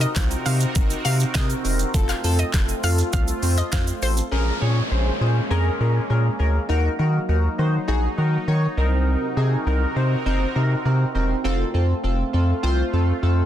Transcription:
Already playing: C3 C4 D#4 F#4 A#4
0.01 D#5, closed hi-hat, shaker
0.16 C2 C4 D#4 F4, kick, snare, clap, closed hi-hat, shaker
0.31 closed hi-hat, shaker
0.46 C3 C4 D#4 C5 F5, open hi-hat, shaker
0.61 closed hi-hat, shaker
0.75 F#1 C4 D#4 A#4, kick, closed hi-hat, shaker
0.90 closed hi-hat, shaker
1.05 C3 C4 D#4 A#4 F5, open hi-hat, shaker
1.20 closed hi-hat, shaker
1.35 C3 C4 D#4 A#4 D#5, kick, snare, clap, closed hi-hat, shaker
1.50 closed hi-hat, shaker
1.64 E1 C4 D#4 A#4, open hi-hat, shaker
1.79 closed hi-hat, shaker
1.94 F1 A3 C4 F4 A4, kick, closed hi-hat, shaker
2.09 F5, clap, closed hi-hat, shaker
2.24 F2 C4 F4 A4, open hi-hat, shaker
2.39 D#5, closed hi-hat, shaker
2.54 F1 C4 F4 A4, kick, snare, clap, closed hi-hat, shaker
2.69 closed hi-hat, shaker
2.83 F2 C4 F4 A4 F5, open hi-hat, shaker
2.98 closed hi-hat, shaker
3.13 C2 C4 F4 A4 F5, kick, closed hi-hat, shaker
3.28 closed hi-hat, shaker
3.43 F2 C4 F4 C5, open hi-hat, shaker
3.57 D#5, closed hi-hat, shaker
3.72 F2 C4 F4 C5 F5, kick, snare, clap, closed hi-hat, shaker
3.87 closed hi-hat, shaker
4.02 A1 C4 F4 A4 C5, open hi-hat, shaker
4.17 closed hi-hat, shaker
4.31 A#1 G#3 A#3 C#4 G#4 A#4, downlifter
4.61 A#2 C#4 G#4 C#5
4.91 A#1 C#4 G#4 C5
5.21 A#2 C#4 G#4 C5
5.50 F2 C#4 G#4 A#4
5.80 A#2 C#4 G#4 A#4
6.10 A#2 C#4 G#4 A#4
6.39 D2 C#4 G#4 A#4
6.69 D#2 F#3 D#4 F#4 A#4
6.99 D#3 D#4 F#4 A#4
7.29 D#2 D#4 F#4 A#4
7.58 D#3 D#4 F#4 C5
7.88 A#1 D#4 F#4 G#4
8.17 D#3 D#4 F#4 A#4
8.48 D#3 D#4 F#4 C#5
8.77 C2 C3 C4 D#4 F#4 A#4
9.37 C3 C4 D#4 G#4
9.66 C2 C4 D#4 A#4
9.96 C3 C4 D#4 C5
10.26 F#1 C4 D#4 A#4
10.55 C3 C4 D#4 A#4
10.85 C3 C4 D#4 A#4
11.15 E1 C4 D#4 A#4
11.44 F1 A3 C4 F4 A4
11.74 F2 C4 F4 A4
12.03 F1 C4 F4 A4
12.33 F2 C4 F4 A4
12.63 C2 C4 F4 C5
12.93 F2 C4 F4 A4
13.23 F2 C4 F4 A4

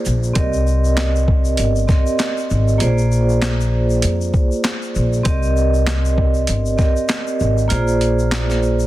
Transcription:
Already playing: A#3 F4 G#4 C5 D5
0.05 A#1, shaker
0.23 shaker
0.33 C2 C4 G4 A#4 D5, kick, closed hi-hat, shaker
0.38 D#5
0.53 shaker
0.67 shaker
0.84 shaker
0.97 snare, clap, closed hi-hat, shaker
1.16 shaker
1.28 kick
1.45 shaker
1.57 G1, closed hi-hat, shaker
1.76 shaker
1.87 C4 G4 A#4 D5 D#5, kick, snare, shaker
2.07 shaker
2.19 snare, clap, closed hi-hat, shaker
2.37 shaker
2.50 G#1, shaker
2.68 shaker
2.78 A#1 A#3 F4 G#4 C5, closed hi-hat, shaker
2.82 D5
2.98 shaker
3.12 shaker
3.29 shaker
3.42 snare, clap, closed hi-hat, shaker
3.61 shaker
3.90 shaker
4.02 F2, closed hi-hat, shaker
4.21 shaker
4.34 kick, shaker
4.52 shaker
4.64 snare, clap, closed hi-hat, shaker
4.82 shaker
4.95 A#1, shaker
5.13 shaker
5.23 C2 C4 G4 A#4 D5, kick, closed hi-hat, shaker
5.28 D#5
5.43 shaker
5.57 shaker
5.74 shaker
5.87 snare, clap, closed hi-hat, shaker
6.05 shaker
6.18 kick
6.34 shaker
6.47 G1, closed hi-hat, shaker
6.66 shaker
6.77 C4 G4 A#4 D5 D#5, kick, snare, shaker
6.96 shaker
7.09 snare, clap, closed hi-hat, shaker
7.27 shaker
7.40 G#1, shaker
7.58 shaker
7.68 A#1 A#3 F4 G#4 C5, closed hi-hat, shaker
7.73 D5
7.88 shaker
8.01 closed hi-hat, shaker
8.19 shaker
8.31 snare, clap, closed hi-hat, shaker
8.50 snare, shaker
8.63 shaker
8.80 shaker

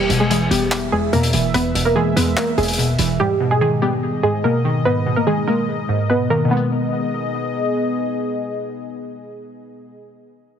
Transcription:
Already playing: E2 G3 G4 E5
0.10 E1 B2, closed hi-hat
0.20 G#3 G#4
0.30 E3 G#3 G#4, closed hi-hat
0.51 E1 G3 B3 G4, closed hi-hat
0.71 clap, closed hi-hat
0.92 E2 G#3 G#4
1.13 E2 B2 A#3 A#4, closed hi-hat
1.23 closed hi-hat
1.33 E1 E3, closed hi-hat
1.54 E1 E2 B3 B4, closed hi-hat
1.75 E1 B2, closed hi-hat
1.85 A#3 A#4
1.96 E3 G#3 G#4
2.16 E2 G#3 B3 B4, closed hi-hat
2.37 A#3 A#4, clap, closed hi-hat
2.58 E1 E2 G#3 G#4, closed hi-hat
2.63 closed hi-hat
2.68 closed hi-hat
2.73 closed hi-hat
2.78 B2, closed hi-hat
2.89 G#1
2.99 E1 E3, closed hi-hat
3.20 G#2 G3 G4 D#5
3.40 B2
3.51 G#3 G#4
3.61 D#3 G#3 G#4
3.82 G3 B3 G4
4.23 G#2 G#3 G#4
4.44 B2 A#3 A#4
4.65 D#3
4.85 G#2 B3 B4
5.06 B2
5.16 A#3 A#4
5.27 D#3 G#3 G#4
5.47 G#3 A#3 A#4
5.89 G#2
6.10 B2 B3 B4
6.30 D#3 A#3 A#4
6.45 B2 D#3
6.51 G#3 B3 G#4 D#5
6.57 B3

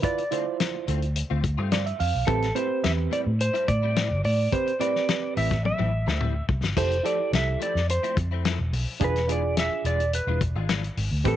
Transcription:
0.02 E4 F4 B4 D5, kick, closed hi-hat
0.18 muted clean electric guitar stroke, closed hi-hat
0.31 D3 A3 C4 E4 F4 C5, closed hi-hat
0.46 muted clean electric guitar stroke
0.60 snare, closed hi-hat
0.74 muted clean electric guitar stroke
0.87 D2 D3 A3 C4 F4, closed hi-hat
1.02 muted clean electric guitar stroke, closed hi-hat
1.16 muted clean electric guitar stroke, closed hi-hat
1.30 D2 D3 A3 C4 F4
1.44 muted clean electric guitar stroke, kick, closed hi-hat
1.57 G2 A3 C4 F4
1.71 D3 A3 C4 F4 D5, snare, closed hi-hat
1.86 E5, closed hi-hat
1.99 F2 F5, muted clean electric guitar stroke, open hi-hat
2.15 B1
2.27 A1 A2 G3 C4 E4 G4 A4 B4, kick, closed hi-hat
2.41 muted clean electric guitar stroke, snare, closed hi-hat
2.55 A2 G3 C4 E4 G4 B4 C5, closed hi-hat
2.69 muted clean electric guitar stroke
2.84 E2 E5, snare, closed hi-hat
2.97 muted clean electric guitar stroke
3.10 A2 G3 C4 E4 D5, closed hi-hat
3.26 A2
3.40 C5, muted clean electric guitar stroke, closed hi-hat
3.53 A2 G3 C4 E4, closed hi-hat
3.67 A2 D5, muted clean electric guitar stroke, kick, closed hi-hat
3.82 G3 C4 E4
3.95 A2 G3 C4 E4, snare, closed hi-hat
4.10 G1, muted clean electric guitar stroke
4.24 A2 D5, muted clean electric guitar stroke, open hi-hat
4.52 C4 G4 B4 C5, kick, closed hi-hat
4.66 muted clean electric guitar stroke, closed hi-hat
4.79 A2 G3 C4 E4 G4 B4 D5, closed hi-hat
4.94 muted clean electric guitar stroke, snare
5.09 snare, closed hi-hat
5.23 muted clean electric guitar stroke
5.36 A1 A2 G3 C4 E4 E5, open hi-hat
5.50 muted clean electric guitar stroke, kick, snare, closed hi-hat
5.63 E5, muted clean electric guitar stroke, high tom
5.78 A1 A2 G3 C4 E4, high tom
5.92 muted clean electric guitar stroke
6.06 D2 G3 C4 E4, snare
6.20 A2 G3 C4 E4, mid tom
6.35 muted clean electric guitar stroke
6.49 C2, muted clean electric guitar stroke, kick
6.63 G1, snare
6.77 F1 F3 A3 C4 E4 G4 A4 C5, kick, closed hi-hat, splash
6.91 muted clean electric guitar stroke, closed hi-hat
7.03 F3 A3 C4 E4 G4 A4 D5, closed hi-hat
7.19 muted clean electric guitar stroke
7.33 C2 E5, snare, closed hi-hat
7.48 muted clean electric guitar stroke
7.60 F3 A3 C4 E4 D5, closed hi-hat
7.75 F2, muted clean electric guitar stroke, snare
7.88 C5, muted clean electric guitar stroke, closed hi-hat
8.03 F3 A3 C4 E4, closed hi-hat
8.17 F2, muted clean electric guitar stroke, kick, closed hi-hat
8.31 A3 C4 E4
8.45 F3 A3 C4 E4, snare, closed hi-hat
8.59 E1, muted clean electric guitar stroke
8.73 B1, muted clean electric guitar stroke, open hi-hat
9.00 E1 E3 G#3 D4 F4 G#4, kick, closed hi-hat
9.04 B4
9.16 snare, closed hi-hat
9.28 E3 G#3 D4 F4 G#4, closed hi-hat
9.32 D5
9.43 muted clean electric guitar stroke
9.57 E5, snare, closed hi-hat
9.72 muted clean electric guitar stroke
9.84 E1 E3 G#3 D4 F4 D5, closed hi-hat
10.00 muted clean electric guitar stroke, closed hi-hat
10.13 B4, muted clean electric guitar stroke, closed hi-hat
10.27 E1 E3 G#3 D4 F4
10.41 kick, closed hi-hat
10.55 G#1 G#3 D4 F4
10.69 E3 G#3 D4 F4, snare, closed hi-hat
10.84 muted clean electric guitar stroke, closed hi-hat
10.97 G#1, muted clean electric guitar stroke, open hi-hat
11.11 D2
11.24 A1 A2 G3 C4 E4 G4 A4 B4, kick, closed hi-hat

